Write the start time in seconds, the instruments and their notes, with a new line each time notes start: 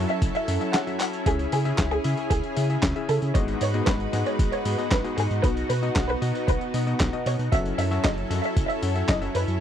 Already playing: electric grand piano F#3 C#4 F#4 A4 E5, analog synth pad F#3 C#4 E4 A4
0.09 violin section E5, closed hi-hat, tambourine
0.22 analog synth bass F#1, kick, closed hi-hat, tambourine
0.35 violin section E5, closed hi-hat, tambourine
0.48 analog synth bass F#2, electric grand piano F#3 C#4 F#4 A4 E5, open hi-hat, tambourine
0.61 electric grand piano F#3 C#4 F#4 A4 E5, closed hi-hat, tambourine
0.74 violin section F#5, snare, clap, closed hi-hat, tambourine
0.87 electric grand piano F#3 C#4 F#4 A4 E5, closed hi-hat, tambourine
1.00 violin section F#5, clap, open hi-hat, tambourine
1.13 closed hi-hat, tambourine
1.26 analog synth bass C#2, electric grand piano C#3 C#4 E4 G#4 E5, violin section G#4, analog synth pad G#4, kick, closed hi-hat, tambourine
1.39 closed hi-hat, tambourine
1.52 analog synth bass C#3, violin section G#4, open hi-hat, tambourine
1.65 electric grand piano C#3 C#4 E4 G#4 E5, closed hi-hat, tambourine
1.78 analog synth bass C#2, kick, snare, clap, closed hi-hat, tambourine
1.91 violin section G#4, closed hi-hat
2.04 electric grand piano C#3 C#4 E4 G#4 E5, analog synth bass C#3, open hi-hat, tambourine
2.17 closed hi-hat, tambourine
2.31 analog synth bass C#2, violin section G#4, kick, closed hi-hat, tambourine
2.44 closed hi-hat
2.57 electric grand piano C#3 C#4 E4 G#4 E5, analog synth bass C#3, open hi-hat, tambourine
2.70 electric grand piano C#3 C#4 E4 G#4 E5, closed hi-hat, tambourine
2.83 analog synth bass C#2, kick, snare, clap, closed hi-hat, tambourine
2.96 electric grand piano C#3 C#4 E4 G#4 E5, closed hi-hat
3.09 analog synth bass C#3, violin section A4, open hi-hat, tambourine
3.22 analog synth bass C#3, closed hi-hat, tambourine
3.35 analog synth bass G#1, electric grand piano G#2 B3 F#4 G#4 D#5, analog synth pad G#3 D#4 F#4 B4, violin section C#5, kick, closed hi-hat, tambourine
3.48 closed hi-hat, tambourine
3.61 analog synth bass G#2, violin section C#5, open hi-hat, tambourine
3.74 electric grand piano G#2 B3 F#4 G#4 D#5, closed hi-hat, tambourine
3.87 analog synth bass G#1, violin section B4, kick, snare, clap, closed hi-hat, tambourine
4.00 closed hi-hat
4.13 electric grand piano G#2 B3 F#4 G#4 D#5, analog synth bass G#2, snare, open hi-hat, tambourine
4.26 violin section C#5, closed hi-hat, tambourine
4.39 analog synth bass G#1, kick, closed hi-hat, tambourine
4.52 violin section C#5, closed hi-hat, tambourine
4.65 analog synth bass G#2, electric grand piano G#2 B3 F#4 G#4 D#5, open hi-hat, tambourine
4.78 electric grand piano G#2 B3 F#4 G#4 D#5, closed hi-hat, tambourine
4.91 analog synth bass G#1, violin section B4, kick, snare, clap, closed hi-hat, tambourine
5.04 electric grand piano G#2 B3 F#4 G#4 D#5, closed hi-hat, tambourine
5.18 analog synth bass G#2, violin section G#4, open hi-hat, tambourine
5.31 analog synth bass G#2, closed hi-hat, tambourine
5.43 analog synth bass B1, electric grand piano B2 B3 D#4 F#4 D#5, analog synth pad B3, violin section B4, kick, closed hi-hat, tambourine
5.57 closed hi-hat, tambourine
5.70 analog synth bass B2, violin section B4, open hi-hat, tambourine
5.83 electric grand piano B2 B3 D#4 F#4 D#5, closed hi-hat, tambourine
5.96 analog synth bass B1, kick, snare, clap, closed hi-hat, tambourine
6.09 violin section B4, closed hi-hat
6.22 electric grand piano B2 B3 D#4 F#4 D#5, analog synth bass B2, open hi-hat, tambourine
6.35 closed hi-hat, tambourine
6.48 analog synth bass B1, violin section B4, kick, closed hi-hat, tambourine
6.61 closed hi-hat
6.74 electric grand piano B2 B3 D#4 F#4 D#5, analog synth bass B2, open hi-hat, tambourine
6.87 electric grand piano B2 B3 D#4 F#4 D#5, closed hi-hat, tambourine
7.00 analog synth bass B1, kick, snare, clap, closed hi-hat, tambourine
7.13 electric grand piano B2 B3 D#4 F#4 D#5, closed hi-hat
7.26 analog synth bass B2, violin section C#5, open hi-hat, tambourine
7.39 analog synth bass B2, closed hi-hat, tambourine
7.52 analog synth bass F#1, electric grand piano F#3 C#4 F#4 A4 E5, analog synth pad F#3 C#4 E4 A4, violin section E5, kick, closed hi-hat, tambourine
7.65 closed hi-hat, tambourine
7.78 analog synth bass F#2, violin section E5, open hi-hat, tambourine
7.91 electric grand piano F#3 C#4 F#4 A4 E5, closed hi-hat, tambourine
8.04 analog synth bass F#1, violin section D#5, kick, snare, clap, closed hi-hat, tambourine
8.18 closed hi-hat
8.30 analog synth bass F#2, electric grand piano F#3 C#4 F#4 A4 E5, snare, open hi-hat, tambourine
8.44 violin section E5, closed hi-hat, tambourine
8.57 analog synth bass F#1, kick, closed hi-hat, tambourine
8.70 violin section E5, closed hi-hat, tambourine
8.82 analog synth bass F#2, electric grand piano F#3 C#4 F#4 A4 E5, open hi-hat, tambourine
8.96 electric grand piano F#3 C#4 F#4 A4 E5, closed hi-hat, tambourine
9.09 analog synth bass F#1, violin section D#5, kick, snare, clap, closed hi-hat, tambourine
9.21 electric grand piano F#3 C#4 F#4 A4 E5, closed hi-hat, tambourine
9.35 analog synth bass F#2, violin section B4, open hi-hat, tambourine
9.48 analog synth bass F#2, closed hi-hat, tambourine